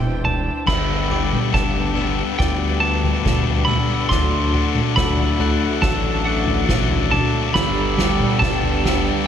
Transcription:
Already playing: E1 E3 C4 D4 E4 C5 D5 G5 G6
0.24 D4 A5, floor tom
0.66 G1 G2 D3 G3 B3 D4 G4 B4 G5 B5 E6, kick, snare, floor tom, crash
1.09 G2 D3 G3 B3 D4 G4 D6, floor tom
1.33 mid tom
1.52 G1 G2 D3 G3 B3 D4 A5, kick, snare, floor tom
1.75 floor tom
1.95 G2 D3 G3 B3 D4 E6, floor tom
2.39 D2 G2 D3 G3 B3 D4 G5 D6, kick, snare, floor tom
2.80 G2 D3 G3 B3 D4 A5 D6
3.04 floor tom
3.24 G2 D3 G3 B3 D4, kick, snare, mid tom
3.47 floor tom
3.65 G2 D3 G3 B3 D4 B5 E6, floor tom, mid tom
4.09 D2 D3 F#3 A3 D4 A4 F#5 C6 D6, kick, snare, floor tom
4.13 F#4
4.53 D3 F#3 A3 D4 F#4, floor tom
4.75 mid tom
4.95 D2 D3 F#3 A3 D4 B5 E6, kick, snare, floor tom
5.18 floor tom
5.40 D3 F#3 A3 D4 F#6, floor tom
5.82 A1 D3 F#3 A3 D4 A5 E6, kick, snare, floor tom
6.25 D3 F#3 A3 D4 F#5 D6
6.46 floor tom
6.67 D3 F#3 A3 D4, kick, snare, mid tom
6.91 floor tom
7.10 D3 F#3 A3 D4 A5 D6, floor tom, mid tom
7.53 G1 G2 D3 G3 B3 D4 G4 D5 G5 B5 E6, kick, snare, floor tom
7.97 G2 D3 G3 B3 D4 G4 D6, snare, floor tom
8.20 mid tom
8.39 G1 G2 D3 G3 B3 D4 A5, kick, snare, floor tom
8.64 floor tom
8.84 G2 D3 G3 B3 D4 E6, snare, floor tom

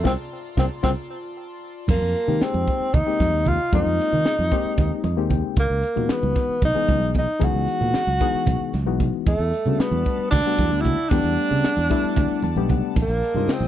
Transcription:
Already playing: F4 D5 A5
0.04 C2 A#3 C4 F4 C6, kick, snare, low conga
0.57 C2 A#3 C4 F4, kick, snare, low conga
0.83 C2 A#3 C4 F4, kick, snare, low conga
1.88 F2 A#3, kick, crash, high conga, low conga
2.02 F2
2.16 closed hi-hat
2.27 D#3 G#3 A#3 C4 D#4 G4, low conga
2.41 C4, muted fingered electric bass stroke, snare, closed hi-hat
2.54 F2, high conga
2.68 kick, closed hi-hat
2.80 muted fingered electric bass stroke
2.94 D#2 D#4, kick, closed hi-hat, low conga
3.06 G#3 A#3 C4 D#4 G4, muted fingered electric bass stroke
3.20 F2, kick, snare, closed hi-hat, high conga
3.32 D#2, low conga
3.46 F4, kick, closed hi-hat, low conga
3.73 F2 G#3 A#3 C4 D#4 F4, kick, closed hi-hat, high conga, low conga
3.86 F2
3.99 snare, closed hi-hat
4.13 D#3, low conga
4.25 muted fingered electric bass stroke, snare, closed hi-hat
4.39 F2, high conga
4.51 G#3 A#3 C4 D#4 G4, kick, closed hi-hat
4.65 muted fingered electric bass stroke
4.78 D#2, kick, closed hi-hat, low conga
4.91 muted fingered electric bass stroke
5.04 F2 D#5, closed hi-hat, high conga
5.17 D#2 G#3 A#3 C4 D#4 G4
5.30 G5, kick, closed hi-hat, low conga
5.56 C#2 A#3, kick, closed hi-hat, high conga, low conga
5.70 C#2
5.83 closed hi-hat
5.96 A#2 E3 G#3 B3 D#4 F#4, low conga
6.09 B3, muted fingered electric bass stroke, snare, closed hi-hat
6.23 C#2, high conga
6.35 kick, snare, closed hi-hat
6.49 muted fingered electric bass stroke
6.62 B1 D#4, kick, closed hi-hat, low conga
6.75 E3 G#3 B3 D#4 G#4, muted fingered electric bass stroke
6.88 C#2, kick, closed hi-hat, high conga
7.01 B1, low conga
7.14 kick, closed hi-hat, low conga
7.18 D#4
7.40 C#2 E3 G#3 B3 D#4 G#4, kick, closed hi-hat, high conga, low conga
7.45 F#4
7.54 C#2, low conga
7.68 closed hi-hat
7.81 A#2, low conga
7.94 muted fingered electric bass stroke, snare, closed hi-hat
8.07 C#2, high conga
8.21 E3 G#3 B3 D#4 G#4, kick, closed hi-hat
8.34 muted fingered electric bass stroke, low conga
8.46 B1, kick, closed hi-hat, low conga
8.61 muted fingered electric bass stroke
8.73 C#2, snare, closed hi-hat, high conga, low conga
8.86 B1 E3 G#3 B3 D#4 F#4
9.00 kick, closed hi-hat, low conga
9.14 low conga
9.25 E2 G3 A3 D5 F#5 A5, kick, closed hi-hat, high conga, low conga
9.39 E2
9.54 closed hi-hat
9.66 C#3 G3 A3 B3 D4 F#4, low conga
9.79 B3, muted fingered electric bass stroke, snare, closed hi-hat
9.91 E2, high conga
10.06 kick, closed hi-hat
10.19 muted fingered electric bass stroke
10.31 D2 D4, kick, snare, closed hi-hat, low conga
10.45 G3 A3 B3 D4 F#4, muted fingered electric bass stroke
10.58 E2, kick, closed hi-hat, high conga
10.71 D2, low conga
10.81 E4, kick, closed hi-hat
10.86 low conga
11.09 E2 G3 A3 B3 D4 G4, kick, closed hi-hat, high conga, low conga
11.24 E2
11.38 closed hi-hat
11.51 C#3, low conga
11.64 muted fingered electric bass stroke, snare, closed hi-hat
11.77 E2, high conga
11.90 G3 A3 B3 D4 E4, kick, closed hi-hat
12.04 muted fingered electric bass stroke
12.16 D2, kick, closed hi-hat, low conga
12.43 E2 A5, closed hi-hat, high conga
12.56 B1 G3 A3 B3 D4 G4, low conga
12.69 F#5, kick, closed hi-hat, low conga
12.96 A#1 G#4 C5 D#5 C6, kick, closed hi-hat, high conga, low conga
13.02 A#3
13.08 A#1
13.24 closed hi-hat
13.34 G2 C#3 G#3 C4 D#4 F4, low conga
13.48 muted fingered electric bass stroke, snare, closed hi-hat
13.52 C4
13.60 A#1, high conga

